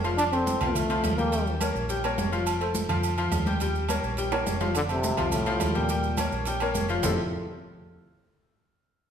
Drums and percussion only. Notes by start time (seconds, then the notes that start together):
0.04 low agogo, maracas
0.18 high conga, low agogo, maracas
0.33 high conga, low agogo, maracas
0.46 high conga, low timbale, maracas
0.61 high conga, low conga, low agogo, maracas
0.75 high conga, low conga, low agogo, maracas
0.90 high conga, low agogo, maracas
1.04 high conga, low timbale, low agogo, maracas
1.18 high conga, maracas
1.32 low agogo, maracas
1.47 high conga, maracas
1.61 high conga, low timbale, low agogo, maracas
1.76 maracas
1.89 high conga, low agogo, maracas
2.04 high conga, low agogo, maracas
2.18 high conga, low timbale, maracas
2.33 low agogo, maracas
2.47 high conga, low agogo, maracas
2.61 high conga, low agogo, maracas
2.75 high conga, low timbale, maracas
2.89 high conga, low conga, low agogo, maracas
3.04 high conga, low agogo, maracas
3.18 high conga, low agogo, maracas
3.32 high conga, low timbale, low agogo, maracas
3.46 high conga, maracas
3.60 high conga, low agogo, maracas
3.75 high conga, maracas
3.89 high conga, low timbale, low agogo, maracas
4.04 maracas
4.17 high conga, low agogo, maracas
4.32 high conga, high timbale, low agogo, maracas
4.47 high conga, low timbale, maracas
4.61 high conga, low timbale, low agogo, maracas
4.75 low agogo, maracas
4.89 high conga, low agogo, maracas
5.03 high conga, low timbale, maracas
5.17 high conga, low conga, low agogo, maracas
5.32 high conga, low conga, low agogo, maracas
5.46 high conga, low agogo, maracas
5.60 high conga, low timbale, low agogo, maracas
5.75 high conga, maracas
5.89 high conga, low agogo, maracas
6.03 high conga, maracas
6.17 high conga, low timbale, low agogo, maracas
6.32 maracas
6.45 high conga, low agogo, maracas
6.60 high conga, low agogo, maracas
6.75 high conga, low timbale, maracas
6.89 low agogo, maracas
7.03 low conga, low timbale, maracas